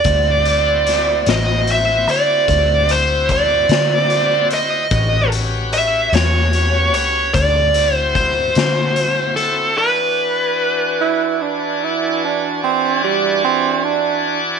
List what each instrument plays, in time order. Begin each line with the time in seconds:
Already playing: lead electric guitar D5
0.04 fingered electric bass D2, tonewheel organ C4 E4 F#4 C5, kick, closed hi-hat
0.45 closed hi-hat
0.87 snare, closed hi-hat
1.26 fingered electric bass A1, lead electric guitar D#5, snare, closed hi-hat
1.67 closed hi-hat
1.72 lead electric guitar E5
2.08 fingered electric bass D3, lead electric guitar D5, closed hi-hat
2.48 fingered electric bass D2, kick, closed hi-hat
2.89 lead electric guitar C5, closed hi-hat
3.29 lead electric guitar D5, kick, closed hi-hat
3.69 fingered electric bass D3, snare, closed hi-hat
4.10 closed hi-hat
4.50 lead electric guitar D#5, closed hi-hat
4.91 fingered electric bass A1, tonewheel organ C#4 F#4 G4 B4, kick, closed hi-hat
5.32 closed hi-hat
5.73 lead electric guitar E5, closed hi-hat
6.12 fingered electric bass E2, lead electric guitar C#5, snare, closed hi-hat
6.53 closed hi-hat
6.93 fingered electric bass C#2, lead electric guitar C#5, closed hi-hat
7.33 fingered electric bass D2, tonewheel organ C#3 F4 G4 C5, lead electric guitar D5, kick, closed hi-hat
7.74 tonewheel organ C4 E4 F#4 C5, closed hi-hat
7.96 lead electric guitar C5
8.15 lead electric guitar C5, kick, closed hi-hat
8.55 fingered electric bass D3, snare, closed hi-hat
8.96 closed hi-hat
9.36 lead electric guitar A4, closed hi-hat
9.76 tonewheel organ E3 D4 F#4 D5 G#5, lead electric guitar B4
11.02 tenor saxophone E4
11.42 tenor saxophone D4
11.84 tenor saxophone E4
12.24 tenor saxophone D4
12.64 tenor saxophone C4
13.04 tenor saxophone G3
13.45 tenor saxophone C4
13.84 tenor saxophone D4